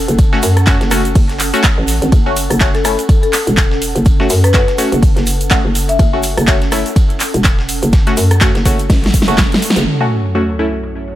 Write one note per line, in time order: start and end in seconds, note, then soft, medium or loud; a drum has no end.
0.00 9.85 C#4 medium
0.00 9.86 A4 medium
0.00 9.87 F#5 medium
0.00 9.87 A5 medium
0.08 0.41 F#1 loud
0.08 closed hi-hat soft
0.08 shaker medium
0.19 kick loud
0.19 closed hi-hat medium
0.19 ride medium
0.19 shaker soft
0.33 0.38 A3 medium
0.33 0.38 C#4 medium
0.33 0.38 F#4 medium
0.33 snare medium
0.43 0.79 F#2 medium
0.43 open hi-hat loud
0.43 ride medium
0.43 shaker medium
0.57 cross-stick medium
0.57 closed hi-hat medium
0.57 shaker soft
0.67 0.74 A3 loud
0.67 0.74 C#4 medium
0.67 0.74 F#4 loud
0.67 kick loud
0.67 snare loud
0.67 clap loud
0.67 closed hi-hat medium
0.67 ride medium
0.67 shaker soft
0.81 1.14 F#1 medium
0.81 snare medium
0.81 closed hi-hat soft
0.91 1.03 A3 medium
0.91 1.03 C#4 medium
0.91 1.03 F#4 medium
0.91 cross-stick medium
0.91 open hi-hat medium
0.91 ride medium
0.91 shaker medium
1.05 closed hi-hat medium
1.05 shaker medium
1.15 1.51 F#1 medium
1.15 kick loud
1.15 closed hi-hat medium
1.15 open hi-hat medium
1.15 shaker soft
1.29 snare soft
1.29 closed hi-hat soft
1.40 clap medium
1.40 open hi-hat loud
1.40 ride medium
1.40 shaker medium
1.54 1.62 A3 medium
1.54 1.62 C#4 medium
1.54 1.62 F#4 loud
1.54 closed hi-hat soft
1.54 shaker medium
1.63 kick loud
1.63 snare loud
1.63 clap loud
1.63 closed hi-hat medium
1.63 ride medium
1.63 shaker soft
1.78 2.00 A1 loud
1.88 open hi-hat medium
1.88 ride medium
1.88 shaker medium
2.02 2.11 G#1 medium
2.02 closed hi-hat soft
2.02 shaker soft
2.12 2.48 F#1 loud
2.12 kick loud
2.12 closed hi-hat medium
2.12 ride medium
2.12 shaker soft
2.26 2.31 A3 medium
2.26 2.31 C#4 medium
2.26 2.31 F#4 medium
2.36 open hi-hat loud
2.36 ride medium
2.36 shaker medium
2.50 2.97 F#1 loud
2.50 cross-stick medium
2.50 closed hi-hat soft
2.50 shaker medium
2.60 2.68 A3 medium
2.60 2.68 C#4 medium
2.60 2.68 F#4 medium
2.60 kick loud
2.60 snare loud
2.60 clap loud
2.60 closed hi-hat medium
2.60 ride medium
2.60 shaker soft
2.75 2.81 A4 medium
2.75 snare soft
2.75 closed hi-hat soft
2.85 2.92 A3 medium
2.85 2.92 C#4 medium
2.85 2.92 E4 medium
2.85 2.94 A4 medium
2.85 cross-stick medium
2.85 open hi-hat medium
2.85 ride medium
2.85 shaker loud
2.99 closed hi-hat medium
2.99 ride soft
2.99 shaker medium
3.09 kick loud
3.09 closed hi-hat medium
3.09 ride medium
3.09 shaker soft
3.23 3.90 A4 medium
3.23 closed hi-hat soft
3.33 clap medium
3.33 open hi-hat loud
3.33 ride medium
3.33 shaker medium
3.47 3.93 E1 medium
3.47 closed hi-hat soft
3.47 shaker soft
3.57 kick loud
3.57 snare loud
3.57 clap loud
3.57 closed hi-hat medium
3.57 ride medium
3.57 shaker soft
3.71 snare soft
3.82 open hi-hat medium
3.82 ride medium
3.82 shaker medium
3.95 4.28 F#1 loud
3.95 closed hi-hat soft
3.95 shaker soft
4.05 kick loud
4.05 closed hi-hat medium
4.05 ride medium
4.05 shaker soft
4.20 4.25 A3 medium
4.20 4.25 C#4 medium
4.20 4.25 F#4 loud
4.20 snare soft
4.30 4.66 F#2 medium
4.30 open hi-hat loud
4.30 ride medium
4.30 shaker medium
4.44 4.51 B4 medium
4.44 cross-stick medium
4.44 closed hi-hat medium
4.44 shaker medium
4.54 4.61 A3 medium
4.54 4.61 C#4 medium
4.54 4.61 F#4 loud
4.54 4.63 B4 medium
4.54 kick loud
4.54 snare loud
4.54 clap loud
4.54 closed hi-hat medium
4.54 ride medium
4.54 shaker soft
4.68 snare medium
4.68 closed hi-hat soft
4.78 4.90 A3 medium
4.78 4.90 C#4 medium
4.78 4.90 F#4 medium
4.78 open hi-hat medium
4.78 ride medium
4.78 shaker medium
4.92 5.14 F#1 loud
4.92 closed hi-hat medium
4.92 shaker soft
5.03 kick loud
5.03 closed hi-hat medium
5.03 open hi-hat medium
5.03 shaker soft
5.16 5.63 F#1 loud
5.16 snare soft
5.16 closed hi-hat soft
5.26 open hi-hat loud
5.26 ride medium
5.26 shaker medium
5.41 closed hi-hat soft
5.41 shaker medium
5.51 5.58 A3 medium
5.51 5.58 C#4 medium
5.51 5.58 F#4 medium
5.51 kick loud
5.51 snare loud
5.51 clap loud
5.51 closed hi-hat medium
5.51 ride medium
5.65 5.98 F#1 loud
5.75 open hi-hat medium
5.75 ride medium
5.75 shaker medium
5.89 6.56 E5 medium
5.89 closed hi-hat medium
5.89 shaker soft
5.99 6.35 F#1 medium
5.99 kick loud
5.99 closed hi-hat medium
5.99 ride medium
5.99 shaker soft
6.13 6.19 A3 medium
6.13 6.19 C#4 medium
6.13 6.19 F#4 medium
6.23 open hi-hat loud
6.23 ride medium
6.23 shaker medium
6.37 6.84 F#1 loud
6.37 cross-stick medium
6.37 closed hi-hat medium
6.37 shaker medium
6.47 6.55 A3 medium
6.47 6.55 C#4 medium
6.47 6.55 F#4 medium
6.47 kick loud
6.47 snare loud
6.47 clap loud
6.47 closed hi-hat medium
6.47 ride medium
6.47 shaker soft
6.62 snare soft
6.62 closed hi-hat soft
6.72 6.79 A3 medium
6.72 6.79 C#4 medium
6.72 6.79 E4 medium
6.72 cross-stick medium
6.72 open hi-hat medium
6.72 ride medium
6.72 shaker medium
6.86 closed hi-hat medium
6.86 shaker medium
6.96 kick loud
6.96 closed hi-hat medium
6.96 ride medium
6.96 shaker soft
7.10 closed hi-hat soft
7.20 clap medium
7.20 open hi-hat loud
7.20 ride medium
7.20 shaker medium
7.34 7.80 E1 loud
7.34 closed hi-hat medium
7.34 shaker soft
7.44 kick loud
7.44 snare loud
7.44 clap loud
7.44 closed hi-hat medium
7.44 ride medium
7.44 shaker soft
7.59 snare soft
7.69 open hi-hat medium
7.69 ride medium
7.69 shaker medium
7.83 8.15 F#1 loud
7.83 closed hi-hat medium
7.83 shaker medium
7.93 kick loud
7.93 snare loud
7.93 closed hi-hat medium
7.93 ride medium
7.93 shaker soft
8.07 8.12 A3 medium
8.07 8.12 C#4 medium
8.07 8.12 F#4 loud
8.07 snare soft
8.07 closed hi-hat soft
8.17 8.53 F#2 medium
8.17 open hi-hat loud
8.17 ride medium
8.17 shaker medium
8.31 cross-stick medium
8.31 closed hi-hat medium
8.31 shaker soft
8.41 8.48 A3 loud
8.41 8.48 C#4 medium
8.41 8.48 F#4 loud
8.41 kick loud
8.41 snare loud
8.41 clap loud
8.41 closed hi-hat medium
8.41 ride medium
8.41 shaker soft
8.55 8.64 F#1 medium
8.55 snare medium
8.55 closed hi-hat soft
8.65 8.88 F#1 loud
8.65 8.77 A3 medium
8.65 8.77 C#4 medium
8.65 8.77 F#4 medium
8.65 kick medium
8.65 open hi-hat medium
8.65 ride medium
8.65 shaker medium
8.79 closed hi-hat medium
8.79 shaker soft
8.90 9.26 A1 loud
8.90 kick loud
8.90 snare medium
8.90 closed hi-hat medium
8.90 open hi-hat medium
8.90 shaker soft
9.04 snare soft
9.04 closed hi-hat soft
9.06 snare medium
9.14 kick medium
9.14 open hi-hat loud
9.14 ride medium
9.14 shaker medium
9.22 snare medium
9.28 9.50 F#1 loud
9.28 9.36 A3 medium
9.28 9.36 C#4 medium
9.28 9.36 F#4 medium
9.28 closed hi-hat medium
9.28 shaker soft
9.38 kick loud
9.38 snare loud
9.38 snare medium
9.38 clap loud
9.38 closed hi-hat medium
9.38 ride medium
9.38 shaker soft
9.52 snare soft
9.52 closed hi-hat soft
9.54 snare loud
9.62 open hi-hat medium
9.62 ride medium
9.62 shaker medium
9.70 snare loud
9.76 9.85 F#1 loud
9.76 closed hi-hat medium
9.76 ride soft
9.76 shaker soft
9.86 11.15 F#3 medium
9.86 11.15 C#4 medium
9.86 11.15 F#4 medium
9.86 11.15 A4 medium
9.86 11.15 C#5 medium
9.86 closed hi-hat medium
9.86 ride medium
9.86 sub drop medium
10.01 10.06 A3 medium
10.01 10.06 C#4 medium
10.01 10.06 F#4 medium
10.07 11.15 A5 medium
10.07 ride medium
10.12 11.15 A4 medium
10.25 closed hi-hat soft
10.35 10.42 A3 medium
10.35 10.42 C#4 medium
10.35 10.42 F#4 medium
10.35 closed hi-hat medium
10.35 ride medium
10.49 snare soft
10.49 closed hi-hat soft
10.59 10.66 A3 medium
10.59 10.66 C#4 medium
10.59 10.66 E4 medium
10.59 ride medium
10.73 closed hi-hat soft
10.73 ride soft
10.83 closed hi-hat medium
10.83 ride medium
10.97 closed hi-hat soft
11.08 11.15 F#5 medium
11.08 ride medium